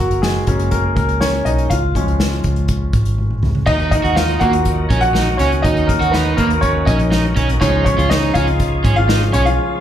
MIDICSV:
0, 0, Header, 1, 6, 480
1, 0, Start_track
1, 0, Tempo, 492207
1, 1664, Time_signature, 4, 2, 24, 8
1, 9560, End_track
2, 0, Start_track
2, 0, Title_t, "Grand piano"
2, 0, Program_c, 0, 0
2, 0, Control_c, 0, 64, 127
2, 0, Note_on_c, 0, 54, 56
2, 0, Note_on_c, 0, 58, 57
2, 0, Note_on_c, 0, 66, 73
2, 0, Note_on_c, 0, 70, 84
2, 211, Note_off_c, 0, 54, 0
2, 214, Note_on_c, 0, 68, 65
2, 226, Note_off_c, 0, 66, 0
2, 234, Note_on_c, 0, 56, 53
2, 459, Note_on_c, 0, 54, 51
2, 465, Note_off_c, 0, 58, 0
2, 465, Note_on_c, 0, 58, 46
2, 470, Note_on_c, 0, 61, 58
2, 676, Note_off_c, 0, 56, 0
2, 694, Note_off_c, 0, 70, 0
2, 694, Note_on_c, 0, 70, 69
2, 695, Note_off_c, 0, 58, 0
2, 710, Note_on_c, 0, 58, 62
2, 713, Note_off_c, 0, 68, 0
2, 919, Note_off_c, 0, 70, 0
2, 930, Note_off_c, 0, 58, 0
2, 934, Note_on_c, 0, 70, 68
2, 950, Note_on_c, 0, 58, 52
2, 1145, Note_off_c, 0, 54, 0
2, 1151, Note_off_c, 0, 61, 0
2, 1170, Note_off_c, 0, 58, 0
2, 1176, Note_on_c, 0, 73, 72
2, 1186, Note_off_c, 0, 70, 0
2, 1193, Note_on_c, 0, 61, 59
2, 1412, Note_off_c, 0, 61, 0
2, 1416, Note_on_c, 0, 75, 66
2, 1427, Note_off_c, 0, 73, 0
2, 1435, Note_on_c, 0, 63, 53
2, 1653, Note_off_c, 0, 63, 0
2, 1655, Note_on_c, 0, 77, 75
2, 1667, Note_off_c, 0, 75, 0
2, 1672, Note_on_c, 0, 65, 59
2, 1676, Control_c, 0, 64, 0
2, 1822, Control_c, 0, 64, 127
2, 1904, Note_on_c, 0, 53, 46
2, 1909, Note_on_c, 0, 56, 48
2, 1915, Note_on_c, 0, 61, 53
2, 3061, Note_off_c, 0, 77, 0
2, 3070, Note_off_c, 0, 65, 0
2, 3546, Note_off_c, 0, 53, 0
2, 3548, Note_off_c, 0, 56, 0
2, 3551, Note_off_c, 0, 61, 0
2, 3573, Note_on_c, 0, 75, 93
2, 3596, Control_c, 0, 64, 0
2, 3596, Note_on_c, 0, 63, 64
2, 3628, Note_off_c, 0, 75, 0
2, 3648, Note_off_c, 0, 63, 0
2, 3779, Control_c, 0, 64, 127
2, 3816, Note_on_c, 0, 75, 92
2, 3837, Note_on_c, 0, 63, 66
2, 4052, Note_on_c, 0, 77, 75
2, 4055, Note_off_c, 0, 63, 0
2, 4068, Note_off_c, 0, 75, 0
2, 4079, Note_on_c, 0, 65, 68
2, 4289, Note_on_c, 0, 78, 92
2, 4296, Note_off_c, 0, 65, 0
2, 4305, Note_on_c, 0, 54, 53
2, 4306, Note_off_c, 0, 77, 0
2, 4308, Note_on_c, 0, 58, 47
2, 4314, Note_on_c, 0, 63, 58
2, 4314, Note_on_c, 0, 66, 75
2, 4869, Note_off_c, 0, 78, 0
2, 4871, Note_off_c, 0, 66, 0
2, 4884, Note_on_c, 0, 78, 111
2, 4911, Note_on_c, 0, 66, 69
2, 5241, Note_on_c, 0, 73, 68
2, 5244, Note_off_c, 0, 66, 0
2, 5266, Note_off_c, 0, 78, 0
2, 5271, Note_on_c, 0, 61, 53
2, 5484, Note_off_c, 0, 54, 0
2, 5484, Note_on_c, 0, 75, 84
2, 5489, Note_off_c, 0, 58, 0
2, 5492, Note_off_c, 0, 61, 0
2, 5496, Note_off_c, 0, 63, 0
2, 5499, Note_on_c, 0, 54, 49
2, 5501, Note_off_c, 0, 73, 0
2, 5503, Note_on_c, 0, 58, 39
2, 5511, Note_on_c, 0, 63, 70
2, 5721, Note_on_c, 0, 70, 73
2, 5735, Note_off_c, 0, 58, 0
2, 5743, Note_off_c, 0, 75, 0
2, 5750, Note_on_c, 0, 58, 58
2, 5961, Note_on_c, 0, 71, 67
2, 5971, Note_off_c, 0, 58, 0
2, 5981, Note_off_c, 0, 70, 0
2, 5991, Note_on_c, 0, 59, 56
2, 6196, Note_off_c, 0, 71, 0
2, 6205, Note_on_c, 0, 70, 79
2, 6212, Note_off_c, 0, 59, 0
2, 6233, Note_on_c, 0, 58, 61
2, 6438, Note_off_c, 0, 70, 0
2, 6446, Note_on_c, 0, 73, 83
2, 6453, Note_off_c, 0, 58, 0
2, 6474, Note_on_c, 0, 61, 68
2, 6692, Note_on_c, 0, 75, 72
2, 6693, Note_off_c, 0, 61, 0
2, 6702, Note_off_c, 0, 63, 0
2, 6704, Note_off_c, 0, 73, 0
2, 6716, Note_on_c, 0, 63, 56
2, 7145, Note_off_c, 0, 75, 0
2, 7158, Note_off_c, 0, 63, 0
2, 7384, Note_off_c, 0, 54, 0
2, 7418, Note_on_c, 0, 73, 85
2, 7426, Note_on_c, 0, 53, 47
2, 7431, Note_on_c, 0, 56, 45
2, 7436, Note_on_c, 0, 61, 62
2, 7439, Control_c, 0, 64, 0
2, 7587, Control_c, 0, 64, 127
2, 7639, Note_off_c, 0, 73, 0
2, 7654, Note_on_c, 0, 73, 80
2, 7656, Note_off_c, 0, 61, 0
2, 7679, Note_on_c, 0, 61, 67
2, 7746, Note_off_c, 0, 53, 0
2, 7748, Note_off_c, 0, 56, 0
2, 7894, Note_on_c, 0, 75, 85
2, 7897, Note_off_c, 0, 61, 0
2, 7908, Note_off_c, 0, 73, 0
2, 7916, Note_on_c, 0, 63, 59
2, 8123, Note_off_c, 0, 75, 0
2, 8131, Note_on_c, 0, 77, 94
2, 8135, Note_off_c, 0, 63, 0
2, 8153, Note_on_c, 0, 65, 84
2, 8700, Note_off_c, 0, 77, 0
2, 8711, Note_off_c, 0, 65, 0
2, 8738, Note_on_c, 0, 77, 99
2, 8760, Note_on_c, 0, 65, 77
2, 9089, Note_off_c, 0, 65, 0
2, 9100, Note_on_c, 0, 73, 81
2, 9114, Note_off_c, 0, 77, 0
2, 9121, Note_on_c, 0, 61, 60
2, 9220, Note_on_c, 0, 77, 94
2, 9226, Note_off_c, 0, 61, 0
2, 9227, Note_off_c, 0, 73, 0
2, 9237, Note_on_c, 0, 65, 73
2, 9344, Note_off_c, 0, 65, 0
2, 9347, Note_off_c, 0, 77, 0
2, 9560, End_track
3, 0, Start_track
3, 0, Title_t, "Overdriven electric guitar"
3, 0, Program_c, 1, 29
3, 3580, Note_on_c, 1, 63, 94
3, 3810, Note_off_c, 1, 63, 0
3, 3937, Note_on_c, 1, 66, 66
3, 4055, Note_off_c, 1, 66, 0
3, 4059, Note_on_c, 1, 63, 69
3, 4290, Note_off_c, 1, 63, 0
3, 4297, Note_on_c, 1, 58, 71
3, 4415, Note_off_c, 1, 58, 0
3, 4779, Note_on_c, 1, 61, 58
3, 4896, Note_off_c, 1, 61, 0
3, 5018, Note_on_c, 1, 63, 56
3, 5136, Note_off_c, 1, 63, 0
3, 5260, Note_on_c, 1, 61, 62
3, 5377, Note_off_c, 1, 61, 0
3, 5499, Note_on_c, 1, 63, 103
3, 5730, Note_off_c, 1, 63, 0
3, 5857, Note_on_c, 1, 66, 72
3, 5975, Note_off_c, 1, 66, 0
3, 5976, Note_on_c, 1, 63, 71
3, 6209, Note_off_c, 1, 63, 0
3, 6212, Note_on_c, 1, 58, 74
3, 6333, Note_off_c, 1, 58, 0
3, 6696, Note_on_c, 1, 61, 61
3, 6815, Note_off_c, 1, 61, 0
3, 6939, Note_on_c, 1, 63, 71
3, 7057, Note_off_c, 1, 63, 0
3, 7177, Note_on_c, 1, 61, 75
3, 7296, Note_off_c, 1, 61, 0
3, 7421, Note_on_c, 1, 63, 102
3, 7652, Note_off_c, 1, 63, 0
3, 7781, Note_on_c, 1, 65, 73
3, 7898, Note_off_c, 1, 65, 0
3, 7904, Note_on_c, 1, 63, 82
3, 8133, Note_off_c, 1, 63, 0
3, 8144, Note_on_c, 1, 61, 82
3, 8259, Note_off_c, 1, 61, 0
3, 8622, Note_on_c, 1, 61, 61
3, 8738, Note_off_c, 1, 61, 0
3, 8863, Note_on_c, 1, 63, 73
3, 8979, Note_off_c, 1, 63, 0
3, 9104, Note_on_c, 1, 61, 71
3, 9219, Note_off_c, 1, 61, 0
3, 9560, End_track
4, 0, Start_track
4, 0, Title_t, "Tonewheel organ"
4, 0, Program_c, 2, 16
4, 3589, Note_on_c, 2, 51, 59
4, 3589, Note_on_c, 2, 54, 54
4, 3589, Note_on_c, 2, 58, 68
4, 7390, Note_off_c, 2, 51, 0
4, 7390, Note_off_c, 2, 54, 0
4, 7390, Note_off_c, 2, 58, 0
4, 7425, Note_on_c, 2, 56, 72
4, 7426, Note_on_c, 2, 49, 65
4, 7426, Note_on_c, 2, 53, 62
4, 9560, Note_off_c, 2, 49, 0
4, 9560, Note_off_c, 2, 53, 0
4, 9560, Note_off_c, 2, 56, 0
4, 9560, End_track
5, 0, Start_track
5, 0, Title_t, "Fingered electric bass"
5, 0, Program_c, 3, 33
5, 101, Note_on_c, 3, 30, 75
5, 437, Note_off_c, 3, 30, 0
5, 463, Note_on_c, 3, 30, 89
5, 910, Note_off_c, 3, 30, 0
5, 942, Note_on_c, 3, 37, 66
5, 1389, Note_off_c, 3, 37, 0
5, 1419, Note_on_c, 3, 35, 74
5, 1644, Note_off_c, 3, 35, 0
5, 1662, Note_on_c, 3, 37, 88
5, 1998, Note_off_c, 3, 37, 0
5, 2020, Note_on_c, 3, 37, 77
5, 2357, Note_off_c, 3, 37, 0
5, 2383, Note_on_c, 3, 37, 81
5, 2830, Note_off_c, 3, 37, 0
5, 2861, Note_on_c, 3, 32, 68
5, 3309, Note_off_c, 3, 32, 0
5, 3341, Note_on_c, 3, 37, 71
5, 3566, Note_off_c, 3, 37, 0
5, 3583, Note_on_c, 3, 39, 83
5, 3919, Note_off_c, 3, 39, 0
5, 3943, Note_on_c, 3, 39, 78
5, 4279, Note_off_c, 3, 39, 0
5, 4303, Note_on_c, 3, 39, 86
5, 4751, Note_off_c, 3, 39, 0
5, 4783, Note_on_c, 3, 34, 80
5, 5231, Note_off_c, 3, 34, 0
5, 5264, Note_on_c, 3, 37, 80
5, 5488, Note_off_c, 3, 37, 0
5, 5505, Note_on_c, 3, 39, 83
5, 5840, Note_off_c, 3, 39, 0
5, 5864, Note_on_c, 3, 39, 73
5, 6200, Note_off_c, 3, 39, 0
5, 6226, Note_on_c, 3, 39, 83
5, 6673, Note_off_c, 3, 39, 0
5, 6704, Note_on_c, 3, 34, 87
5, 7152, Note_off_c, 3, 34, 0
5, 7188, Note_on_c, 3, 35, 78
5, 7410, Note_off_c, 3, 35, 0
5, 7426, Note_on_c, 3, 37, 87
5, 7761, Note_off_c, 3, 37, 0
5, 7786, Note_on_c, 3, 37, 84
5, 8121, Note_off_c, 3, 37, 0
5, 8148, Note_on_c, 3, 37, 90
5, 8594, Note_off_c, 3, 37, 0
5, 8626, Note_on_c, 3, 32, 90
5, 9073, Note_off_c, 3, 32, 0
5, 9106, Note_on_c, 3, 35, 99
5, 9330, Note_off_c, 3, 35, 0
5, 9560, End_track
6, 0, Start_track
6, 0, Title_t, "Drums"
6, 105, Note_on_c, 9, 42, 43
6, 203, Note_off_c, 9, 42, 0
6, 223, Note_on_c, 9, 38, 96
6, 321, Note_off_c, 9, 38, 0
6, 456, Note_on_c, 9, 42, 61
6, 462, Note_on_c, 9, 36, 68
6, 554, Note_off_c, 9, 42, 0
6, 560, Note_off_c, 9, 36, 0
6, 578, Note_on_c, 9, 42, 47
6, 676, Note_off_c, 9, 42, 0
6, 696, Note_on_c, 9, 42, 66
6, 701, Note_on_c, 9, 36, 67
6, 793, Note_off_c, 9, 42, 0
6, 798, Note_off_c, 9, 36, 0
6, 941, Note_on_c, 9, 36, 86
6, 941, Note_on_c, 9, 42, 51
6, 1039, Note_off_c, 9, 36, 0
6, 1039, Note_off_c, 9, 42, 0
6, 1060, Note_on_c, 9, 42, 44
6, 1157, Note_off_c, 9, 42, 0
6, 1181, Note_on_c, 9, 38, 84
6, 1278, Note_off_c, 9, 38, 0
6, 1422, Note_on_c, 9, 42, 66
6, 1519, Note_off_c, 9, 42, 0
6, 1544, Note_on_c, 9, 42, 44
6, 1642, Note_off_c, 9, 42, 0
6, 1663, Note_on_c, 9, 36, 72
6, 1664, Note_on_c, 9, 42, 80
6, 1760, Note_off_c, 9, 36, 0
6, 1761, Note_off_c, 9, 42, 0
6, 1903, Note_on_c, 9, 36, 68
6, 1910, Note_on_c, 9, 42, 64
6, 2001, Note_off_c, 9, 36, 0
6, 2007, Note_off_c, 9, 42, 0
6, 2027, Note_on_c, 9, 42, 41
6, 2125, Note_off_c, 9, 42, 0
6, 2144, Note_on_c, 9, 38, 90
6, 2241, Note_off_c, 9, 38, 0
6, 2270, Note_on_c, 9, 42, 26
6, 2368, Note_off_c, 9, 42, 0
6, 2376, Note_on_c, 9, 42, 62
6, 2383, Note_on_c, 9, 36, 64
6, 2474, Note_off_c, 9, 42, 0
6, 2480, Note_off_c, 9, 36, 0
6, 2499, Note_on_c, 9, 42, 45
6, 2596, Note_off_c, 9, 42, 0
6, 2615, Note_on_c, 9, 42, 61
6, 2621, Note_on_c, 9, 36, 75
6, 2713, Note_off_c, 9, 42, 0
6, 2718, Note_off_c, 9, 36, 0
6, 2859, Note_on_c, 9, 42, 56
6, 2861, Note_on_c, 9, 36, 87
6, 2956, Note_off_c, 9, 42, 0
6, 2959, Note_off_c, 9, 36, 0
6, 2978, Note_on_c, 9, 42, 49
6, 3075, Note_off_c, 9, 42, 0
6, 3103, Note_on_c, 9, 48, 48
6, 3201, Note_off_c, 9, 48, 0
6, 3223, Note_on_c, 9, 47, 57
6, 3321, Note_off_c, 9, 47, 0
6, 3342, Note_on_c, 9, 45, 73
6, 3439, Note_off_c, 9, 45, 0
6, 3460, Note_on_c, 9, 43, 68
6, 3558, Note_off_c, 9, 43, 0
6, 3580, Note_on_c, 9, 49, 77
6, 3582, Note_on_c, 9, 36, 81
6, 3677, Note_off_c, 9, 49, 0
6, 3680, Note_off_c, 9, 36, 0
6, 3700, Note_on_c, 9, 42, 31
6, 3798, Note_off_c, 9, 42, 0
6, 3822, Note_on_c, 9, 36, 82
6, 3826, Note_on_c, 9, 42, 65
6, 3920, Note_off_c, 9, 36, 0
6, 3924, Note_off_c, 9, 42, 0
6, 3946, Note_on_c, 9, 42, 40
6, 4043, Note_off_c, 9, 42, 0
6, 4062, Note_on_c, 9, 38, 92
6, 4159, Note_off_c, 9, 38, 0
6, 4187, Note_on_c, 9, 42, 30
6, 4284, Note_off_c, 9, 42, 0
6, 4297, Note_on_c, 9, 42, 60
6, 4304, Note_on_c, 9, 36, 66
6, 4395, Note_off_c, 9, 42, 0
6, 4401, Note_off_c, 9, 36, 0
6, 4418, Note_on_c, 9, 42, 48
6, 4516, Note_off_c, 9, 42, 0
6, 4536, Note_on_c, 9, 42, 70
6, 4542, Note_on_c, 9, 36, 67
6, 4634, Note_off_c, 9, 42, 0
6, 4640, Note_off_c, 9, 36, 0
6, 4782, Note_on_c, 9, 42, 53
6, 4783, Note_on_c, 9, 36, 89
6, 4879, Note_off_c, 9, 42, 0
6, 4880, Note_off_c, 9, 36, 0
6, 4899, Note_on_c, 9, 42, 51
6, 4997, Note_off_c, 9, 42, 0
6, 5022, Note_on_c, 9, 38, 90
6, 5120, Note_off_c, 9, 38, 0
6, 5258, Note_on_c, 9, 42, 60
6, 5260, Note_on_c, 9, 38, 27
6, 5356, Note_off_c, 9, 42, 0
6, 5357, Note_off_c, 9, 38, 0
6, 5384, Note_on_c, 9, 42, 47
6, 5482, Note_off_c, 9, 42, 0
6, 5504, Note_on_c, 9, 36, 82
6, 5505, Note_on_c, 9, 42, 74
6, 5602, Note_off_c, 9, 36, 0
6, 5603, Note_off_c, 9, 42, 0
6, 5623, Note_on_c, 9, 42, 30
6, 5721, Note_off_c, 9, 42, 0
6, 5744, Note_on_c, 9, 36, 77
6, 5748, Note_on_c, 9, 42, 69
6, 5842, Note_off_c, 9, 36, 0
6, 5845, Note_off_c, 9, 42, 0
6, 5868, Note_on_c, 9, 42, 46
6, 5965, Note_off_c, 9, 42, 0
6, 5985, Note_on_c, 9, 38, 100
6, 6083, Note_off_c, 9, 38, 0
6, 6219, Note_on_c, 9, 42, 66
6, 6225, Note_on_c, 9, 36, 67
6, 6317, Note_off_c, 9, 42, 0
6, 6323, Note_off_c, 9, 36, 0
6, 6343, Note_on_c, 9, 42, 47
6, 6440, Note_off_c, 9, 42, 0
6, 6459, Note_on_c, 9, 42, 65
6, 6464, Note_on_c, 9, 36, 68
6, 6557, Note_off_c, 9, 42, 0
6, 6562, Note_off_c, 9, 36, 0
6, 6703, Note_on_c, 9, 42, 57
6, 6704, Note_on_c, 9, 36, 90
6, 6800, Note_off_c, 9, 42, 0
6, 6801, Note_off_c, 9, 36, 0
6, 6820, Note_on_c, 9, 42, 52
6, 6917, Note_off_c, 9, 42, 0
6, 6942, Note_on_c, 9, 38, 93
6, 7039, Note_off_c, 9, 38, 0
6, 7182, Note_on_c, 9, 42, 68
6, 7187, Note_on_c, 9, 36, 74
6, 7279, Note_off_c, 9, 42, 0
6, 7284, Note_off_c, 9, 36, 0
6, 7307, Note_on_c, 9, 42, 46
6, 7405, Note_off_c, 9, 42, 0
6, 7426, Note_on_c, 9, 36, 87
6, 7428, Note_on_c, 9, 42, 76
6, 7524, Note_off_c, 9, 36, 0
6, 7526, Note_off_c, 9, 42, 0
6, 7666, Note_on_c, 9, 36, 82
6, 7670, Note_on_c, 9, 42, 69
6, 7764, Note_off_c, 9, 36, 0
6, 7767, Note_off_c, 9, 42, 0
6, 7792, Note_on_c, 9, 42, 46
6, 7889, Note_off_c, 9, 42, 0
6, 7908, Note_on_c, 9, 38, 105
6, 8005, Note_off_c, 9, 38, 0
6, 8143, Note_on_c, 9, 42, 67
6, 8147, Note_on_c, 9, 36, 73
6, 8240, Note_off_c, 9, 42, 0
6, 8245, Note_off_c, 9, 36, 0
6, 8263, Note_on_c, 9, 42, 50
6, 8361, Note_off_c, 9, 42, 0
6, 8382, Note_on_c, 9, 42, 75
6, 8386, Note_on_c, 9, 36, 70
6, 8480, Note_off_c, 9, 42, 0
6, 8484, Note_off_c, 9, 36, 0
6, 8625, Note_on_c, 9, 42, 58
6, 8626, Note_on_c, 9, 36, 92
6, 8722, Note_off_c, 9, 42, 0
6, 8724, Note_off_c, 9, 36, 0
6, 8745, Note_on_c, 9, 42, 47
6, 8842, Note_off_c, 9, 42, 0
6, 8866, Note_on_c, 9, 38, 96
6, 8964, Note_off_c, 9, 38, 0
6, 8988, Note_on_c, 9, 42, 34
6, 9085, Note_off_c, 9, 42, 0
6, 9103, Note_on_c, 9, 42, 75
6, 9201, Note_off_c, 9, 42, 0
6, 9229, Note_on_c, 9, 42, 48
6, 9327, Note_off_c, 9, 42, 0
6, 9560, End_track
0, 0, End_of_file